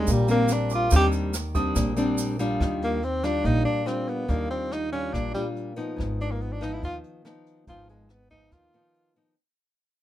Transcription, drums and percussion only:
0.07 kick, closed hi-hat, shaker
0.28 closed hi-hat, shaker
0.48 cross-stick, closed hi-hat, shaker
0.70 closed hi-hat, shaker
0.91 kick, closed hi-hat, shaker
1.12 closed hi-hat, shaker
1.34 cross-stick, closed hi-hat, shaker
1.55 kick, closed hi-hat, shaker
1.76 kick, cross-stick, closed hi-hat, shaker
1.97 closed hi-hat, shaker
2.18 closed hi-hat, shaker
2.39 closed hi-hat, shaker
2.61 kick, cross-stick, closed hi-hat
2.82 closed hi-hat
3.03 closed hi-hat
3.24 cross-stick, closed hi-hat
3.45 kick, closed hi-hat
3.66 closed hi-hat
3.87 cross-stick, closed hi-hat
4.08 closed hi-hat
4.29 kick, closed hi-hat
4.51 closed hi-hat
4.72 cross-stick, closed hi-hat
4.92 closed hi-hat
5.14 kick, cross-stick, closed hi-hat
5.36 closed hi-hat
5.56 closed hi-hat
5.78 closed hi-hat
5.99 kick, cross-stick, closed hi-hat
6.20 closed hi-hat
6.41 closed hi-hat
6.62 cross-stick, closed hi-hat
6.83 kick, closed hi-hat
7.04 closed hi-hat
7.25 cross-stick, closed hi-hat
7.46 closed hi-hat
7.67 kick, closed hi-hat
7.89 closed hi-hat
8.09 cross-stick, closed hi-hat
8.30 kick, closed hi-hat
8.51 kick, cross-stick, closed hi-hat
8.73 closed hi-hat
8.94 closed hi-hat
9.15 closed hi-hat

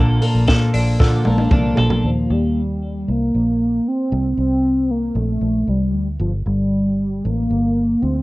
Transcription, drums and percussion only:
0.22 open hi-hat
0.48 kick, snare, closed hi-hat
0.74 open hi-hat
1.00 kick, snare
1.25 high tom
1.38 high tom
1.51 kick, mid tom
1.77 floor tom
1.90 floor tom

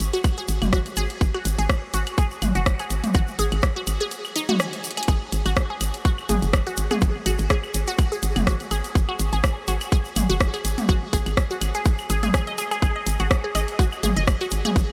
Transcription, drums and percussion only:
0.00 closed hi-hat, shaker
0.13 closed hi-hat, shaker
0.24 kick, closed hi-hat, claves, shaker
0.37 shaker
0.48 closed hi-hat, shaker
0.62 closed hi-hat, mid tom, claves, shaker
0.73 kick, cross-stick, closed hi-hat, shaker
0.86 closed hi-hat, shaker
0.96 closed hi-hat, claves, shaker
1.09 closed hi-hat, shaker
1.21 kick, closed hi-hat, shaker
1.34 claves
1.45 closed hi-hat, shaker
1.59 closed hi-hat, shaker
1.69 kick, cross-stick, closed hi-hat, claves, shaker
1.94 closed hi-hat, shaker
2.07 closed hi-hat, claves, shaker
2.18 kick, closed hi-hat, shaker
2.31 shaker
2.42 closed hi-hat, mid tom, claves, shaker
2.55 closed hi-hat, shaker
2.66 kick, cross-stick, closed hi-hat, shaker
2.79 closed hi-hat, claves, shaker
2.90 closed hi-hat, shaker
3.04 closed hi-hat, mid tom, shaker
3.14 kick, closed hi-hat, claves, shaker
3.28 shaker
3.39 closed hi-hat, shaker
3.52 closed hi-hat, claves, shaker
3.63 kick, cross-stick, closed hi-hat, shaker
3.76 shaker
3.87 closed hi-hat, claves, shaker
4.00 closed hi-hat, shaker
4.11 closed hi-hat, shaker
4.25 claves, shaker
4.36 closed hi-hat, shaker
4.49 closed hi-hat, mid tom, shaker
4.60 cross-stick, closed hi-hat, claves, shaker
4.73 closed hi-hat, shaker
4.84 closed hi-hat, shaker
4.91 closed hi-hat
4.97 closed hi-hat, claves, shaker
5.03 closed hi-hat
5.08 kick, closed hi-hat, claves, shaker
5.32 closed hi-hat, shaker
5.46 closed hi-hat, claves, shaker
5.56 kick, cross-stick, closed hi-hat, shaker
5.81 closed hi-hat, claves, shaker
5.94 closed hi-hat, shaker
6.05 kick, closed hi-hat, shaker
6.18 claves, shaker
6.29 closed hi-hat, mid tom, shaker
6.42 closed hi-hat, shaker
6.53 kick, cross-stick, closed hi-hat, claves, shaker
6.67 closed hi-hat, shaker
6.77 closed hi-hat, shaker
6.91 closed hi-hat, mid tom, claves, shaker
7.01 kick, closed hi-hat, shaker
7.26 closed hi-hat, claves, shaker
7.38 closed hi-hat, shaker
7.50 kick, cross-stick, closed hi-hat, shaker
7.63 claves, shaker
7.74 closed hi-hat, shaker
7.87 closed hi-hat, shaker
7.98 kick, closed hi-hat, claves, shaker
8.12 shaker
8.23 closed hi-hat, shaker
8.36 closed hi-hat, mid tom, claves, shaker
8.47 kick, cross-stick, closed hi-hat, shaker
8.60 closed hi-hat, shaker
8.71 closed hi-hat, claves, shaker
8.84 closed hi-hat, shaker
8.95 kick, closed hi-hat, shaker
9.09 claves
9.19 closed hi-hat, shaker
9.33 closed hi-hat, shaker
9.44 kick, cross-stick, closed hi-hat, claves, shaker
9.67 closed hi-hat, shaker
9.81 closed hi-hat, claves, shaker
9.92 kick, closed hi-hat, shaker
10.05 shaker
10.16 closed hi-hat, mid tom, claves, shaker
10.30 closed hi-hat, shaker
10.40 kick, cross-stick, closed hi-hat, shaker
10.54 closed hi-hat, claves, shaker
10.65 closed hi-hat, shaker
10.78 closed hi-hat, mid tom, shaker
10.89 kick, closed hi-hat, claves, shaker
11.13 kick, closed hi-hat, shaker
11.26 closed hi-hat, claves, shaker
11.37 kick, cross-stick, closed hi-hat, shaker
11.50 shaker
11.61 closed hi-hat, claves, shaker
11.74 closed hi-hat, shaker
11.85 kick, closed hi-hat, shaker
11.98 claves, shaker
12.10 closed hi-hat, shaker
12.23 closed hi-hat, mid tom, shaker
12.34 kick, cross-stick, closed hi-hat, claves, shaker
12.47 closed hi-hat, shaker
12.58 closed hi-hat, shaker
12.71 closed hi-hat, claves, shaker
12.82 kick, closed hi-hat, claves, shaker
13.07 closed hi-hat, shaker
13.19 closed hi-hat, claves, shaker
13.31 kick, cross-stick, closed hi-hat, shaker
13.55 closed hi-hat, claves, shaker
13.68 closed hi-hat, shaker
13.79 kick, closed hi-hat, shaker
13.92 claves, shaker
14.03 closed hi-hat, mid tom, shaker
14.16 closed hi-hat, shaker
14.28 kick, cross-stick, closed hi-hat, claves, shaker
14.41 closed hi-hat, shaker
14.51 closed hi-hat, shaker
14.65 closed hi-hat, mid tom, claves, shaker
14.76 kick, closed hi-hat, shaker

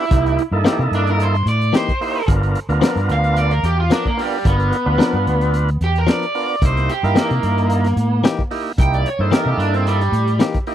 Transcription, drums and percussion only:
0.11 kick, closed hi-hat
0.26 closed hi-hat
0.39 closed hi-hat
0.65 snare, closed hi-hat
0.93 closed hi-hat
1.07 closed hi-hat
1.20 closed hi-hat
1.35 closed hi-hat
1.47 closed hi-hat
1.61 closed hi-hat
1.74 snare, closed hi-hat
1.88 kick, closed hi-hat
2.02 open hi-hat
2.28 kick, closed hi-hat
2.43 closed hi-hat
2.55 closed hi-hat
2.70 closed hi-hat
2.82 snare, closed hi-hat
2.97 snare, closed hi-hat
3.09 closed hi-hat
3.24 closed hi-hat
3.36 closed hi-hat
3.51 closed hi-hat
3.64 closed hi-hat
3.91 snare, closed hi-hat
4.05 kick
4.19 open hi-hat
4.45 kick, closed hi-hat
4.60 closed hi-hat
4.73 closed hi-hat
5.00 snare, closed hi-hat
5.27 closed hi-hat
5.41 closed hi-hat
5.54 closed hi-hat
5.69 closed hi-hat
5.81 closed hi-hat
5.96 closed hi-hat
6.08 snare, closed hi-hat
6.22 closed hi-hat
6.35 open hi-hat
6.62 kick, closed hi-hat
6.77 snare, closed hi-hat
6.89 closed hi-hat
7.04 closed hi-hat
7.16 snare, closed hi-hat
7.31 closed hi-hat
7.43 closed hi-hat
7.58 closed hi-hat
7.70 closed hi-hat
7.84 snare, closed hi-hat
7.97 closed hi-hat
8.24 snare, closed hi-hat
8.39 kick
8.51 open hi-hat
8.78 kick, closed hi-hat
8.93 closed hi-hat
9.06 closed hi-hat
9.32 snare, closed hi-hat
9.60 closed hi-hat
9.74 closed hi-hat
9.87 closed hi-hat
10.01 closed hi-hat
10.13 closed hi-hat
10.27 closed hi-hat
10.40 snare, closed hi-hat
10.54 kick, closed hi-hat
10.67 open hi-hat

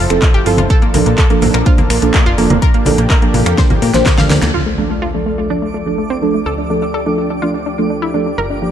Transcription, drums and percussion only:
0.10 finger snap, closed hi-hat
0.22 kick, clap, closed hi-hat, high conga
0.34 closed hi-hat
0.46 open hi-hat
0.57 closed hi-hat, high conga
0.70 kick, closed hi-hat
0.82 closed hi-hat
0.94 open hi-hat, high conga
1.06 closed hi-hat
1.18 kick, clap, closed hi-hat
1.30 closed hi-hat
1.42 open hi-hat, high conga, low conga
1.54 finger snap, closed hi-hat
1.66 kick, closed hi-hat
1.78 closed hi-hat, high conga, low conga
1.90 finger snap, open hi-hat
2.02 closed hi-hat
2.14 kick, clap, closed hi-hat, high conga
2.26 closed hi-hat
2.38 open hi-hat
2.50 closed hi-hat, high conga
2.62 kick, closed hi-hat
2.74 closed hi-hat
2.86 open hi-hat, high conga
2.98 closed hi-hat
3.10 kick, clap, closed hi-hat
3.22 closed hi-hat
3.34 open hi-hat, high conga, low conga
3.46 finger snap, closed hi-hat
3.58 kick, snare, closed hi-hat
3.70 closed hi-hat, high conga, low conga
3.82 open hi-hat
3.94 snare, closed hi-hat
4.06 kick, snare, clap, closed hi-hat, high conga
4.18 snare, closed hi-hat
4.30 snare, open hi-hat
4.42 snare, closed hi-hat, high conga

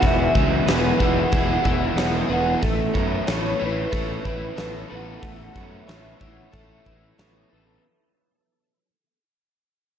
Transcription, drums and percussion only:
0.02 kick, open hi-hat
0.35 kick
0.68 snare, open hi-hat
1.00 kick
1.32 kick, open hi-hat
1.65 kick
1.97 snare, open hi-hat
2.62 kick, open hi-hat
2.95 kick
3.27 snare, open hi-hat
3.92 kick, open hi-hat
4.25 kick
4.57 snare, open hi-hat
5.23 kick, open hi-hat
5.56 kick
5.88 snare, open hi-hat
6.21 kick
6.53 kick, open hi-hat
6.86 kick
7.18 snare, open hi-hat

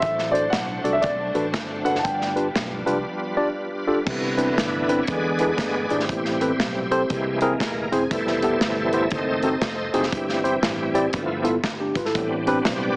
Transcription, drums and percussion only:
0.02 kick, closed hi-hat
0.19 snare
0.35 closed hi-hat
0.53 snare, closed hi-hat
0.85 closed hi-hat
1.03 kick, closed hi-hat
1.35 closed hi-hat
1.54 kick, snare, closed hi-hat
1.86 closed hi-hat
1.95 snare
2.05 kick, closed hi-hat
2.21 snare
2.37 closed hi-hat
2.56 snare, closed hi-hat
2.87 closed hi-hat
4.07 kick, crash
4.39 closed hi-hat
4.58 snare, closed hi-hat
4.89 closed hi-hat
5.07 kick, closed hi-hat
5.39 closed hi-hat
5.58 kick, snare, closed hi-hat
5.90 closed hi-hat
6.00 snare
6.09 kick, closed hi-hat
6.25 snare
6.41 closed hi-hat
6.60 snare, closed hi-hat
6.92 closed hi-hat
7.10 kick, closed hi-hat
7.41 closed hi-hat
7.60 kick, snare, closed hi-hat
7.93 closed hi-hat
8.11 kick, closed hi-hat
8.27 snare
8.43 closed hi-hat
8.61 snare, closed hi-hat
8.93 closed hi-hat
9.11 kick, closed hi-hat
9.43 closed hi-hat
9.62 kick, snare, closed hi-hat
9.94 closed hi-hat
10.03 snare
10.12 kick, closed hi-hat
10.29 snare
10.45 closed hi-hat
10.63 snare, closed hi-hat
10.95 closed hi-hat
11.13 kick, closed hi-hat
11.45 closed hi-hat
11.64 kick, snare, closed hi-hat
11.95 kick, closed hi-hat
12.05 snare
12.15 kick, closed hi-hat
12.47 closed hi-hat
12.65 snare, closed hi-hat

